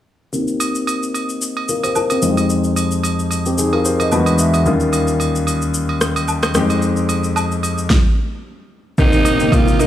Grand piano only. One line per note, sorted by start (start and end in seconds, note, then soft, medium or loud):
0.33 2.18 A#3 medium
0.33 1.66 C4 medium
0.33 1.66 D#4 medium
0.33 1.66 G4 medium
1.69 1.83 F4 medium
1.69 1.83 A#4 medium
1.84 1.95 G4 medium
1.84 1.95 C5 medium
1.96 2.10 F4 medium
1.96 2.10 A#4 medium
2.11 2.21 C4 medium
2.11 2.29 G4 medium
2.22 4.08 F2 medium
2.22 4.08 G#3 medium
2.22 3.29 C4 medium
2.22 3.29 D#4 medium
2.22 2.30 F4 medium
2.30 3.33 G4 medium
3.46 3.58 C4 medium
3.46 3.57 G4 medium
3.58 3.72 D#4 medium
3.58 3.72 G#4 medium
3.73 3.85 F4 medium
3.73 3.84 A#4 medium
3.85 3.99 G4 medium
3.85 3.99 C5 medium
4.00 4.26 A#4 medium
4.00 4.26 D#5 medium
4.12 4.66 E2 medium
4.12 4.19 G3 medium
4.12 4.66 B3 medium
4.12 4.66 D4 medium
4.12 4.66 F#4 medium
4.12 4.37 B5 medium
4.18 4.69 G#3 medium
4.39 4.64 E5 medium
4.65 6.51 D#2 medium
4.65 6.51 G3 medium
4.65 6.51 A#3 medium
4.65 6.52 C#4 medium
4.65 6.52 F4 medium
6.55 7.87 F2 medium
6.55 7.87 G#3 medium
6.55 7.88 C4 medium
6.55 7.88 D#4 medium
6.55 7.88 G4 medium
8.98 9.31 A#3 loud
8.98 9.31 C4 medium
8.98 9.31 D#4 medium
8.98 9.32 G4 loud
9.40 9.72 A#3 medium
9.40 9.72 C4 medium
9.40 9.72 D#4 medium
9.40 9.72 G4 medium
9.79 9.87 A#3 medium
9.79 9.87 C4 medium
9.79 9.87 D4 medium
9.79 9.87 A#4 medium